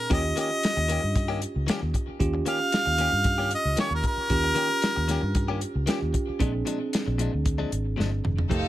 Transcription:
Already playing: harmonica A#4
0.10 fingered electric bass D#2, clean electric guitar D#3 A#3 C#4 G4, tine electric piano C#4 F4 G4, harmonica D#5, kick, closed hi-hat
0.24 muted clean electric guitar stroke
0.36 clean electric guitar D#3 A#3 C#4 G4, closed hi-hat
0.40 harmonica D#5
0.51 muted clean electric guitar stroke
0.63 snare, closed hi-hat
0.77 fingered electric bass D#2, muted clean electric guitar stroke
0.88 clean electric guitar D#3 A#3 C#4 G4, closed hi-hat
1.02 fingered electric bass G2, muted clean electric guitar stroke
1.15 muted clean electric guitar stroke, kick, closed hi-hat
1.28 clean electric guitar D#3 A#3 C#4 G4
1.41 muted clean electric guitar stroke, closed hi-hat
1.56 fingered electric bass C#2
1.67 clean electric guitar D#3 A#3 C#4 G4, snare, closed hi-hat
1.82 fingered electric bass D#2, muted clean electric guitar stroke
1.94 muted clean electric guitar stroke, kick, closed hi-hat
2.08 muted fingered electric bass stroke
2.20 fingered electric bass D#2, tine electric piano C#4 F4 G4, kick, closed hi-hat
2.34 muted clean electric guitar stroke
2.46 clean electric guitar D#3 A#3 C#4 G4, harmonica F5, closed hi-hat
2.60 muted clean electric guitar stroke
2.72 snare, closed hi-hat
2.86 fingered electric bass D#2, muted clean electric guitar stroke
2.98 clean electric guitar D#3 A#3 C#4 G4, closed hi-hat
3.12 fingered electric bass G2, muted clean electric guitar stroke
3.24 muted clean electric guitar stroke, kick, closed hi-hat
3.38 clean electric guitar D#3 A#3 C#4 G4
3.51 harmonica D#5, closed hi-hat
3.65 fingered electric bass C#2
3.76 clean electric guitar D#3 A#3 C#4 G4, harmonica C#5, snare, closed hi-hat
3.91 fingered electric bass D#2, muted clean electric guitar stroke
3.95 harmonica A#4
4.03 harmonica A#4, muted clean electric guitar stroke, kick, closed hi-hat
4.17 muted fingered electric bass stroke
4.30 fingered electric bass D#2, tine electric piano C#4 F4 G4, kick, closed hi-hat
4.44 muted clean electric guitar stroke
4.55 clean electric guitar D#3 A#3 C#4 G4, closed hi-hat
4.70 muted clean electric guitar stroke
4.82 snare, closed hi-hat
4.96 fingered electric bass D#2, muted clean electric guitar stroke
5.08 clean electric guitar D#3 A#3 C#4 G4, snare, closed hi-hat
5.23 fingered electric bass G2, muted clean electric guitar stroke
5.35 muted clean electric guitar stroke, kick, closed hi-hat
5.48 clean electric guitar D#3 A#3 C#4 G4
5.61 muted clean electric guitar stroke, closed hi-hat
5.75 fingered electric bass C#2
5.86 clean electric guitar D#3 A#3 C#4 G4, tine electric piano C#4 F4 G4, snare, closed hi-hat
6.01 fingered electric bass D#2, muted clean electric guitar stroke
6.13 muted clean electric guitar stroke, kick, closed hi-hat
6.29 muted fingered electric bass stroke
6.39 fingered electric bass A#1, clean electric guitar A#2 F3 G#3 D4, tine electric piano C4 D4 G#4, kick, closed hi-hat
6.53 muted clean electric guitar stroke
6.65 clean electric guitar A#2 F3 G#3 D4, closed hi-hat
6.80 muted clean electric guitar stroke
6.93 snare, closed hi-hat
7.07 fingered electric bass A#1, muted clean electric guitar stroke
7.18 clean electric guitar A#2 F3 G#3 D4, closed hi-hat
7.33 fingered electric bass D2, muted clean electric guitar stroke
7.45 muted clean electric guitar stroke, kick, closed hi-hat
7.58 clean electric guitar A#2 F3 G#3 D4
7.71 fingered electric bass G#1, muted clean electric guitar stroke, closed hi-hat
7.96 fingered electric bass G1, clean electric guitar A#2 F3 G#3 D4, snare
8.11 muted clean electric guitar stroke
8.24 fingered electric bass F1, muted clean electric guitar stroke, mid tom
8.38 floor tom
8.50 fingered electric bass F1, clean electric guitar F2 D#3 A3 C4, tine electric piano A3 D#4 G4, string section D#4 F4 A4, kick, closed hi-hat
8.63 muted clean electric guitar stroke

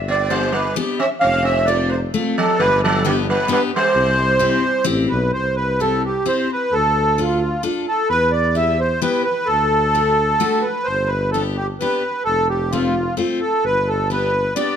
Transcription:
Already playing: tuba G1
0.08 sitar B3, accordion D5
0.30 sitar G3, steel-string acoustic guitar B3 D4 G4, accordion C5
0.52 sitar G3, accordion B4
0.76 steel-string acoustic guitar B3 D4 G4
0.99 sitar C4, accordion E5
1.20 tuba F1, sitar C4, accordion F5
1.43 sitar C4, accordion E5
1.65 sitar A3, steel-string acoustic guitar A3 C4 F4, accordion D5
1.89 sitar A3, accordion C5
2.14 steel-string acoustic guitar A3 C4 F4
2.38 sitar F3, accordion A4
2.59 tuba G1, sitar G3, accordion B4
2.83 sitar F3, accordion A4
3.05 sitar D3, steel-string acoustic guitar B3 D4 G4, accordion G4
3.30 sitar G3, accordion B4
3.48 steel-string acoustic guitar B3 D4 G4
3.52 sitar G3, accordion B4
3.75 sitar G3, accordion C5
3.95 tuba C2
4.39 steel-string acoustic guitar C4 E4 G4
4.84 tuba A1, steel-string acoustic guitar C4 E4 G4
5.09 tuba B1, accordion B4
5.33 tuba C2, accordion C5
5.56 accordion B4
5.80 steel-string acoustic guitar C4 E4 G4, accordion A4
6.05 accordion G4
6.25 steel-string acoustic guitar C4 E4 G4, accordion C5
6.52 accordion B4
6.73 tuba D2, accordion A4
7.18 steel-string acoustic guitar D4 F4 A4, accordion F4
7.63 steel-string acoustic guitar D4 F4 A4
7.88 accordion A4
8.09 tuba E2, accordion B4
8.31 accordion D5
8.55 steel-string acoustic guitar B3 E4 G4, accordion E5
8.79 accordion C5
9.02 steel-string acoustic guitar B3 E4 G4, accordion B4
9.24 accordion B4
9.46 tuba D2, accordion A4
9.95 steel-string acoustic guitar A3 D4 F#4
10.40 steel-string acoustic guitar A3 D4 F#4
10.62 accordion B4
10.84 accordion C5
10.89 tuba G1
11.07 accordion B4
11.31 steel-string acoustic guitar B3 D4 G4, accordion A4
11.57 accordion G4
11.80 steel-string acoustic guitar B3 D4 G4, accordion B4
12.25 tuba F1, accordion A4
12.49 accordion G4
12.71 steel-string acoustic guitar A3 C4 F4, accordion F4
13.17 steel-string acoustic guitar A3 C4 F4
13.41 accordion A4
13.64 tuba G1, accordion B4
13.88 accordion A4
14.10 steel-string acoustic guitar B3 D4 G4, accordion B4
14.56 steel-string acoustic guitar B3 D4 G4, accordion D5

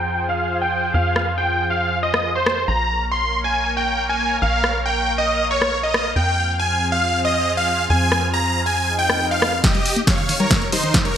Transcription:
Already playing: analog synth bass F2, analog synth pad F3 F4 G#4 C5, supersaw synth G5, grand piano G5
0.29 supersaw synth F5, grand piano F5
0.62 supersaw synth G5, grand piano G5
0.94 analog synth bass F2, supersaw synth F5, grand piano F5
1.16 cross-stick
1.38 supersaw synth G5, grand piano G5
1.70 grand piano F5, supersaw synth F5
2.03 grand piano D#5, supersaw synth D#5
2.14 cross-stick
2.35 supersaw synth C5, grand piano C5
2.46 cross-stick
2.68 analog synth bass A#1, analog synth pad A#3 A#4 C#5 F5, supersaw synth A#5, grand piano A#5
3.11 supersaw synth C6, grand piano C6
3.44 grand piano G#5, supersaw synth G#5
3.77 grand piano G5, supersaw synth G5
4.09 grand piano G#5, supersaw synth G#5
4.42 analog synth bass A#1, supersaw synth F5, grand piano F5
4.64 cross-stick
4.86 supersaw synth G5, grand piano G5
5.18 grand piano D#5, supersaw synth D#5
5.51 supersaw synth C#5, grand piano C#5
5.62 cross-stick
5.83 grand piano D#5, supersaw synth D#5
5.94 cross-stick
6.16 analog synth bass F2, analog synth pad F3 C4 G#4, grand piano G5, supersaw synth G5
6.59 supersaw synth G#5, grand piano G#5
6.92 supersaw synth F5, grand piano F5
7.25 grand piano D#5, supersaw synth D#5
7.57 supersaw synth F5, grand piano F5
7.90 analog synth bass F2, supersaw synth G#5, grand piano G#5
8.12 cross-stick
8.34 grand piano A#5, supersaw synth A#5
8.66 grand piano G#5, supersaw synth G#5
8.77 swell
8.99 grand piano G5, supersaw synth G5
9.10 cross-stick
9.31 supersaw synth F5, grand piano F5
9.42 cross-stick
9.64 analog synth pad D#2 D#3 G4 A#4, synth arpeggio sound D#3, supersaw synth G4 D#5, kick, snare, closed hi-hat
9.75 synth arpeggio sound G3, closed hi-hat
9.86 open hi-hat
9.96 synth arpeggio sound A#3, closed hi-hat
10.07 synth arpeggio sound G3, supersaw synth C#5 F5, kick, snare, closed hi-hat
10.18 synth arpeggio sound D#3, closed hi-hat
10.29 synth arpeggio sound D#3, open hi-hat
10.40 synth arpeggio sound G3, supersaw synth A#4 C#5, closed hi-hat
10.51 kick, snare, closed hi-hat
10.62 synth arpeggio sound A#3, closed hi-hat
10.72 synth arpeggio sound G3, supersaw synth D#4 C5, open hi-hat
10.83 synth arpeggio sound D#3, closed hi-hat
10.94 synth arpeggio sound D#3, kick, snare, closed hi-hat
11.05 synth arpeggio sound G3, supersaw synth A#4 C#5, closed hi-hat

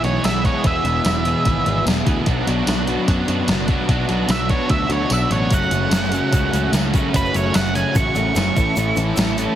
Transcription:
0.03 picked electric bass B1, overdriven electric guitar E2 B2 E3 G#3 B3 E4 G#4, lead electric guitar C#5, closed hi-hat
0.24 picked electric bass B1, overdriven electric guitar E2 B2 E3 G#3 B3 E4 G#4, lead electric guitar E5, snare, closed hi-hat, tambourine
0.44 overdriven electric guitar E2 B2 E3 G#3 B3 E4 G#4, lead electric guitar C#5, kick, closed hi-hat
0.64 picked electric bass E1, overdriven electric guitar E2 B2 E3 G#3 B3 E4 G#4, lead electric guitar E5, kick, closed hi-hat
0.84 picked electric bass E1, overdriven electric guitar E2 B2 E3 G#3 B3 E4 G#4, closed hi-hat
1.04 picked electric bass E1, overdriven electric guitar E2 B2 E3 G#3 B3 E4 G#4, snare, closed hi-hat, tambourine
1.24 overdriven electric guitar E2 B2 E3 G#3 B3 E4 G#4, closed hi-hat
1.44 picked electric bass G#1, overdriven electric guitar E2 B2 E3 G#3 B3 E4 G#4, kick, closed hi-hat
1.65 picked electric bass G#1, overdriven electric guitar E2 B2 E3 G#3 B3 E4 G#4, closed hi-hat
1.84 picked electric bass E1, overdriven electric guitar E2 B2 E3 G#3 B3 E4, snare, closed hi-hat, tambourine
1.89 overdriven electric guitar G#4
2.05 picked electric bass D2, overdriven electric guitar E2 B2 E3 G#3 B3 E4 G#4, kick, closed hi-hat
2.26 picked electric bass B1, overdriven electric guitar B2 F#3 B3 D4 F#4, kick, closed hi-hat
2.46 picked electric bass B1, overdriven electric guitar B2 F#3 B3 D4 F#4, closed hi-hat
2.66 picked electric bass B1, overdriven electric guitar B2 F#3 B3 D4 F#4, snare, closed hi-hat, tambourine
2.86 overdriven electric guitar B2 F#3 B3 D4 F#4, closed hi-hat
3.07 picked electric bass F#2, overdriven electric guitar B2 F#3 B3 D4 F#4, kick, closed hi-hat
3.28 picked electric bass F#2, overdriven electric guitar B2 F#3 B3 D4 F#4, closed hi-hat
3.48 picked electric bass F#1, overdriven electric guitar B2 F#3 B3 D4 F#4, snare, closed hi-hat, tambourine
3.68 overdriven electric guitar B2 F#3 B3 D4, kick, closed hi-hat
3.72 overdriven electric guitar F#4
3.88 picked electric bass B1, overdriven electric guitar B2 F#3 B3 D4 F#4, kick, closed hi-hat
4.08 picked electric bass B1, overdriven electric guitar B2 F#3 B3 D4 F#4, closed hi-hat
4.28 picked electric bass B1, overdriven electric guitar B2 F#3 B3 D4 F#4, lead electric guitar E5, snare, closed hi-hat, tambourine
4.49 overdriven electric guitar B2 F#3 B3 D4 F#4, lead electric guitar C#5, kick, closed hi-hat
4.69 picked electric bass D2, overdriven electric guitar B2 F#3 B3 D4 F#4, lead electric guitar E5, kick, closed hi-hat
4.89 picked electric bass D2, overdriven electric guitar B2 F#3 B3 D4 F#4, lead electric guitar C#5, closed hi-hat
5.10 picked electric bass B1, overdriven electric guitar B2 F#3 B3 D4 F#4, lead electric guitar E5, closed hi-hat, tambourine
5.29 picked electric bass A1, overdriven electric guitar B2 F#3 B3 D4 F#4, lead electric guitar C#5, closed hi-hat
5.50 picked electric bass F#1, overdriven electric guitar F#2 C#3 F#3 A3 C#4 F#4, lead electric guitar F#5, kick, closed hi-hat, shaker
5.63 shaker
5.70 picked electric bass F#1, overdriven electric guitar F#2 C#3 F#3 A3 C#4 F#4, closed hi-hat, shaker
5.90 picked electric bass F#1, overdriven electric guitar F#2 C#3 F#3 A3 C#4 F#4, snare, closed hi-hat, tambourine, shaker
6.04 shaker
6.11 overdriven electric guitar F#2 C#3 F#3 A3 C#4 F#4, closed hi-hat, shaker
6.32 picked electric bass C#2, overdriven electric guitar F#2 C#3 F#3 A3 C#4 F#4, kick, closed hi-hat, shaker
6.52 picked electric bass C#2, overdriven electric guitar F#2 C#3 F#3 A3 C#4 F#4, closed hi-hat, shaker
6.72 picked electric bass C#2, overdriven electric guitar F#2 C#3 F#3 A3 C#4 F#4, snare, closed hi-hat, tambourine, shaker
6.92 overdriven electric guitar F#2 C#3 F#3 A3 C#4 F#4, kick, closed hi-hat, shaker
7.12 picked electric bass F#1, overdriven electric guitar F#2 C#3 F#3 A3 C#4 F#4, kick, closed hi-hat, shaker
7.16 lead electric guitar B4
7.25 shaker
7.33 picked electric bass F#1, overdriven electric guitar F#2 C#3 F#3 A3 C#4 F#4, lead electric guitar C#5, closed hi-hat, shaker
7.54 picked electric bass F#1, overdriven electric guitar F#2 C#3 F#3 A3 C#4 F#4, lead electric guitar F#5, snare, closed hi-hat, tambourine, shaker
7.66 shaker
7.74 overdriven electric guitar F#2 C#3 F#3 A3 C#4 F#4, lead electric guitar G#5, closed hi-hat, shaker
7.95 picked electric bass A1, overdriven electric guitar F#2 C#3 F#3 A3 C#4 F#4, lead electric guitar C#6, kick, closed hi-hat, shaker
8.14 picked electric bass A1, overdriven electric guitar F#2 C#3 F#3 A3 C#4 F#4, closed hi-hat, shaker
8.35 picked electric bass F#1, overdriven electric guitar F#2 C#3 F#3 A3 C#4 F#4, lead electric guitar C#6, snare, closed hi-hat, tambourine, shaker
8.55 picked electric bass A1, overdriven electric guitar A2 E3 A3 C#4 E4 A4, kick, closed hi-hat, shaker
8.75 picked electric bass A1, overdriven electric guitar A2 E3 A3 C#4 E4 A4, closed hi-hat, shaker
8.96 picked electric bass A1, overdriven electric guitar A2 E3 A3 C#4 E4 A4, closed hi-hat, shaker
9.16 picked electric bass A1, overdriven electric guitar A2 E3 A3 C#4 E4 A4, snare, closed hi-hat, tambourine, shaker
9.28 shaker
9.36 overdriven electric guitar A2 E3 A3 C#4 E4 A4, closed hi-hat, shaker

